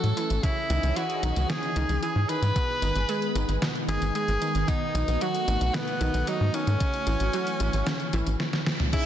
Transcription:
0.00 0.13 A2 medium
0.00 0.41 E3 medium
0.00 0.14 F#3 loud
0.00 0.39 A3 medium
0.00 2.52 C#4 medium
0.00 0.41 F#4 medium
0.00 0.45 A4 medium
0.00 closed hi-hat soft
0.17 0.26 E3 medium
0.17 closed hi-hat medium
0.30 0.40 A1 medium
0.30 closed hi-hat medium
0.43 0.67 C#3 loud
0.43 2.54 E3 medium
0.43 0.98 E4 medium
0.43 4.64 G#4 medium
0.43 2.54 D#5 medium
0.43 kick loud
0.43 closed hi-hat medium
0.70 0.79 C#2 medium
0.70 0.86 D#3 medium
0.70 closed hi-hat medium
0.83 0.93 C#2 medium
0.83 closed hi-hat soft
0.96 1.12 E3 loud
0.96 1.51 F#4 medium
0.96 closed hi-hat medium
1.10 closed hi-hat soft
1.23 1.32 B1 medium
1.23 1.33 D#3 medium
1.23 closed hi-hat medium
1.36 1.46 C#2 medium
1.36 closed hi-hat soft
1.50 1.66 C#3 loud
1.50 2.02 G#4 loud
1.50 snare loud
1.50 closed hi-hat medium
1.63 closed hi-hat soft
1.76 1.85 C#2 medium
1.76 2.00 D#3 loud
1.76 closed hi-hat medium
1.89 1.99 C#2 medium
1.89 closed hi-hat soft
2.03 2.27 E3 loud
2.03 2.31 G#4 loud
2.03 closed hi-hat medium
2.16 2.25 G#2 medium
2.29 2.39 D#3 medium
2.29 3.61 B4 loud
2.29 closed hi-hat medium
2.42 2.52 G#2 medium
2.42 closed hi-hat soft
2.56 2.80 B2 loud
2.56 6.76 D#3 medium
2.56 4.66 G#3 medium
2.56 6.76 B3 medium
2.56 kick loud
2.56 closed hi-hat medium
2.82 2.92 G#1 medium
2.82 2.98 D#3 medium
2.82 closed hi-hat medium
2.95 3.05 G#1 medium
2.95 closed hi-hat soft
3.09 3.25 G#3 loud
3.09 closed hi-hat medium
3.22 closed hi-hat soft
3.35 3.45 G#1 medium
3.35 3.45 D#3 medium
3.35 closed hi-hat medium
3.48 3.58 G#1 medium
3.48 closed hi-hat soft
3.62 3.78 B2 loud
3.62 snare loud
3.62 closed hi-hat medium
3.75 closed hi-hat soft
3.88 3.98 G#1 medium
3.88 4.13 D#3 loud
3.88 4.13 G#4 loud
3.88 closed hi-hat medium
4.02 4.11 G#1 medium
4.02 closed hi-hat soft
4.15 4.39 G#3 loud
4.15 4.70 G#4 loud
4.15 closed hi-hat medium
4.28 4.38 G#1 medium
4.28 closed hi-hat soft
4.42 4.51 D#3 medium
4.42 closed hi-hat medium
4.55 4.64 G#1 medium
4.55 closed hi-hat medium
4.68 4.92 B2 loud
4.68 8.36 A3 medium
4.68 5.23 D#4 loud
4.68 6.78 F#4 medium
4.68 kick loud
4.68 closed hi-hat medium
4.95 5.04 B1 medium
4.95 5.11 D#3 medium
4.95 closed hi-hat medium
5.08 5.17 B1 medium
5.08 closed hi-hat medium
5.21 5.37 F#3 loud
5.21 5.76 F#4 loud
5.21 closed hi-hat medium
5.35 closed hi-hat soft
5.48 5.57 A1 medium
5.48 5.57 D#3 medium
5.48 closed hi-hat medium
5.61 5.70 B1 medium
5.61 closed hi-hat soft
5.74 5.90 B2 loud
5.74 6.29 B3 medium
5.74 snare loud
5.74 closed hi-hat medium
5.88 closed hi-hat soft
6.01 6.10 B1 medium
6.01 6.25 D#3 loud
6.01 closed hi-hat medium
6.14 6.23 B1 medium
6.14 closed hi-hat soft
6.27 6.51 F#3 loud
6.27 6.56 D#4 loud
6.27 closed hi-hat medium
6.41 6.50 G#2 medium
6.54 6.64 D#3 medium
6.54 8.40 C#4 loud
6.54 closed hi-hat medium
6.67 6.77 G#2 medium
6.67 closed hi-hat medium
6.80 7.04 C#3 loud
6.80 8.38 E3 medium
6.80 8.38 C#4 medium
6.80 8.38 F#4 medium
6.80 kick loud
6.80 closed hi-hat medium
6.94 closed hi-hat soft
7.07 7.16 A1 medium
7.07 7.23 E3 medium
7.07 closed hi-hat medium
7.20 7.30 A1 medium
7.20 closed hi-hat medium
7.33 7.50 F#3 loud
7.33 closed hi-hat medium
7.47 closed hi-hat soft
7.60 7.70 A1 medium
7.60 7.70 E3 medium
7.60 closed hi-hat medium
7.73 7.83 A1 medium
7.73 closed hi-hat medium
7.87 8.03 C#3 loud
7.87 snare loud
7.87 closed hi-hat medium
8.00 closed hi-hat soft
8.13 8.23 A1 loud
8.13 8.37 E3 loud
8.13 closed hi-hat medium
8.27 8.36 A1 medium
8.27 closed hi-hat medium
8.40 snare medium
8.53 snare medium
8.66 snare medium
8.80 mid tom medium
8.93 9.06 C#3 loud
8.93 9.06 C#4 medium
8.93 9.06 D#4 medium
8.93 9.06 E4 loud
8.93 9.06 E4 medium
8.93 9.06 G#4 loud
8.93 9.06 E5 loud
8.93 kick loud
8.93 closed hi-hat medium
8.93 crash loud

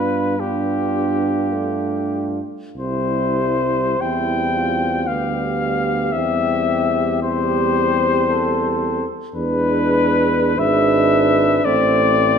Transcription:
0.00 2.41 G2 soft
0.00 0.37 B3 soft
0.00 0.37 D4 soft
0.00 0.37 F4 soft
0.00 0.41 B4 medium
0.38 1.54 B3 soft
0.38 2.41 D4 soft
0.38 2.41 F4 soft
0.38 2.45 G4 medium
1.52 2.45 A3 soft
2.75 3.96 C2 soft
2.75 3.97 G3 soft
2.75 3.97 C4 soft
2.75 3.97 E4 soft
2.75 4.03 C5 medium
3.99 5.09 E2 soft
3.99 5.06 G3 soft
3.99 5.11 C4 soft
3.99 4.58 E4 soft
3.99 5.09 G5 medium
4.57 5.11 F4 soft
5.07 6.14 D2 soft
5.07 6.12 G3 soft
5.07 6.16 B3 soft
5.07 6.14 G4 soft
5.07 6.14 F5 medium
6.12 9.08 E2 medium
6.12 7.20 G3 soft
6.12 7.21 C4 soft
6.12 7.21 G4 soft
6.12 7.22 E5 medium
7.22 9.04 G3 medium
7.22 9.05 C4 medium
7.22 8.28 G4 soft
7.22 9.05 C5 medium
8.29 9.07 A4 soft
9.34 10.58 E2 medium
9.34 10.54 G#3 medium
9.34 10.54 D4 medium
9.34 10.60 B4 medium
9.34 10.55 B4 medium
10.57 11.64 G#1 medium
10.57 11.63 G#3 medium
10.57 11.68 D4 medium
10.57 11.64 B4 medium
10.57 11.66 E5 medium
11.64 12.38 A1 medium
11.64 12.38 A3 medium
11.64 12.38 C4 medium
11.64 12.38 C5 medium
11.64 12.38 D5 medium

